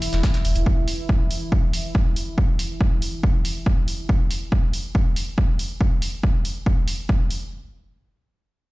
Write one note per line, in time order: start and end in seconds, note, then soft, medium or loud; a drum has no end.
0.00 4.14 E3 medium
0.00 4.13 E4 medium
0.00 closed hi-hat medium
0.00 open hi-hat loud
0.13 0.23 E1 medium
0.13 snare soft
0.13 closed hi-hat soft
0.23 kick loud
0.23 snare medium
0.23 closed hi-hat medium
0.34 snare soft
0.34 closed hi-hat medium
0.45 0.55 E1 loud
0.45 closed hi-hat medium
0.45 open hi-hat medium
0.56 0.66 E1 medium
0.56 closed hi-hat soft
0.66 kick loud
0.88 open hi-hat loud
1.09 kick loud
1.31 open hi-hat medium
1.52 kick loud
1.73 open hi-hat loud
1.95 kick loud
2.16 open hi-hat medium
2.38 kick loud
2.59 open hi-hat loud
2.81 kick loud
3.02 open hi-hat medium
3.23 kick loud
3.45 open hi-hat loud
3.66 kick loud
3.88 open hi-hat medium
4.09 kick loud
4.31 open hi-hat loud
4.52 kick loud
4.73 open hi-hat medium
4.95 kick loud
5.16 open hi-hat loud
5.38 kick loud
5.59 open hi-hat medium
5.81 kick loud
6.02 open hi-hat loud
6.23 kick loud
6.45 open hi-hat medium
6.66 kick loud
6.88 open hi-hat loud
7.09 kick loud
7.31 open hi-hat medium